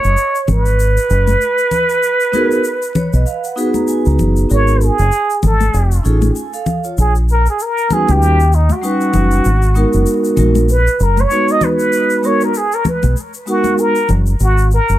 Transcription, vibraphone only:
2.32 2.56 B3 medium
2.32 2.57 D#4 medium
2.32 2.57 F#4 medium
2.32 2.57 G#4 medium
2.32 2.58 A#4 loud
2.96 3.12 C#5 medium
3.14 3.26 D#5 medium
3.26 3.43 F5 medium
3.44 3.73 F#5 medium
3.56 4.44 B3 medium
3.56 4.44 D#4 medium
3.56 4.45 F#4 medium
3.56 4.45 G#4 medium
3.56 4.46 B4 loud
3.75 3.87 A#5 medium
3.88 4.05 G#5 medium
4.06 4.47 A#5 medium
4.49 4.88 B3 medium
4.49 4.88 D#4 medium
4.49 4.88 F#4 medium
4.49 4.89 G#4 medium
4.49 4.89 A#4 medium
6.03 6.27 C#4 medium
6.03 6.28 D#4 medium
6.03 6.28 F4 medium
6.03 6.28 G#4 medium
6.03 6.29 A4 medium
6.35 6.53 G#5 medium
6.54 6.83 A4 medium
6.54 6.83 F5 medium
6.84 7.14 F4 soft
6.84 7.14 C#5 medium
7.89 8.35 G3 medium
7.89 7.97 B3 soft
7.89 8.35 D#4 medium
7.89 8.36 F#4 medium
7.89 8.36 B4 medium
7.96 8.38 C#4 medium
8.82 9.44 G3 medium
8.82 9.45 C#4 medium
8.82 9.45 D#4 medium
8.82 9.45 F#4 medium
8.82 9.46 B4 medium
9.74 10.35 G#3 medium
9.74 10.36 B3 medium
9.74 10.37 D#4 medium
9.74 10.37 F#4 medium
9.74 10.38 A#4 medium
10.37 10.60 G#3 medium
10.37 10.61 B3 medium
10.37 10.61 D#4 medium
10.37 10.61 F#4 medium
10.37 10.62 A#4 medium
11.29 12.18 G#3 medium
11.29 12.18 B3 medium
11.29 12.18 D#4 medium
11.29 12.19 F#4 medium
11.29 12.19 B4 medium
12.22 12.46 G#3 medium
12.22 12.46 B3 medium
12.22 12.47 D#4 medium
12.22 12.47 F#4 medium
12.22 12.47 A#4 medium
13.46 13.92 G#3 medium
13.46 13.92 B3 medium
13.46 13.92 D#4 medium
13.46 13.93 F#4 medium
13.46 13.93 A#4 medium

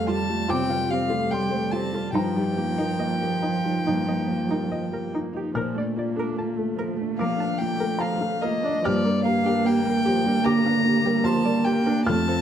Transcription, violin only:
0.10 0.52 A5 medium
0.50 0.92 G5 loud
0.91 1.33 F5 medium
1.31 1.73 G5 medium
1.71 2.14 A5 medium
2.15 5.10 G5 medium
7.19 7.60 F5 medium
7.58 8.02 G5 medium
8.01 8.43 F5 medium
8.42 8.86 D#5 medium
8.84 9.24 D5 medium
9.25 9.68 F5 medium
9.66 10.46 G5 medium
10.44 11.26 A#5 loud
11.24 11.67 A5 loud
11.65 12.05 G5 medium
12.06 12.41 A5 loud

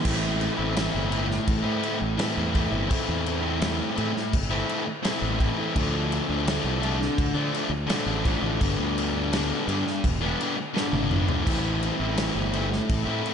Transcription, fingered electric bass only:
0.05 0.48 A1 loud
0.59 0.87 A1 medium
0.95 1.37 G1 medium
1.48 1.62 A1 medium
1.65 1.80 A2 loud
2.02 2.16 A1 medium
2.37 2.66 E2 medium
2.72 2.87 G1 loud
3.08 3.80 E2 loud
3.98 4.12 A2 medium
4.33 4.62 G1 medium
5.22 5.51 A1 medium
5.76 6.19 D2 loud
6.29 6.58 D2 medium
6.64 7.07 C2 medium
7.19 7.33 D2 medium
7.34 7.49 D3 loud
7.70 7.85 D2 loud
8.06 8.35 A1 medium
8.42 8.57 A1 medium
8.61 8.76 G1 loud
8.79 9.51 D2 medium
9.68 9.82 G2 medium
10.04 10.32 E1 medium
10.93 11.22 G#1 medium
11.46 11.89 A1 loud
12.00 12.29 A1 medium
12.35 12.78 G1 medium
12.90 13.04 A1 medium
13.07 13.21 A2 loud

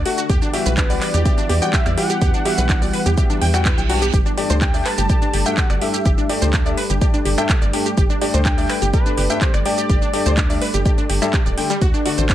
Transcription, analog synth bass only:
0.30 0.40 E2 loud
0.66 0.99 B1 loud
1.14 1.24 E2 medium
1.50 1.60 E2 medium
1.86 1.96 E2 medium
2.22 2.32 E2 loud
2.58 2.91 B1 loud
3.06 3.16 E2 medium
3.42 3.75 E2 medium
3.78 4.11 B1 medium
4.14 4.24 G1 loud
4.50 4.83 D2 loud
4.98 5.08 G1 medium
5.34 5.44 G1 medium
5.70 5.80 G1 medium
6.06 6.16 G1 loud
6.42 6.75 D2 loud
6.90 7.00 G1 medium
7.25 7.36 G1 medium
7.62 7.72 G1 medium
7.98 8.08 G1 loud
8.34 8.67 D2 loud
8.82 8.92 G1 medium
9.18 9.28 G1 medium
9.54 9.64 G1 medium
9.90 10.00 G1 loud
10.26 10.59 D2 loud
10.74 10.84 G1 medium
11.10 11.20 G1 medium
11.46 11.56 D1 medium
11.82 11.92 D2 loud
12.18 12.35 A1 loud

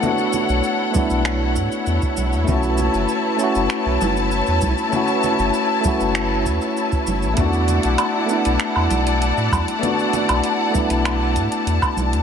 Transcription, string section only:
0.00 12.23 E4 medium
0.00 2.44 A4 medium
0.00 7.34 C#5 medium
0.00 2.44 F#5 medium
2.49 7.35 B4 medium
2.49 7.34 A5 medium
7.38 12.23 D5 medium
7.38 12.23 F#5 medium
7.38 12.23 A5 medium

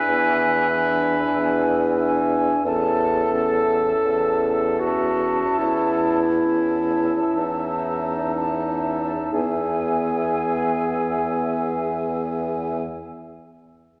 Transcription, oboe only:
0.00 0.68 E5 soft
0.70 1.96 E5 soft
2.00 2.64 E5 soft
2.66 3.32 E5 soft
3.34 4.77 E5 soft
4.80 6.26 E5 soft
6.43 8.31 E5 soft
8.35 9.32 E5 soft
9.34 12.83 E5 soft

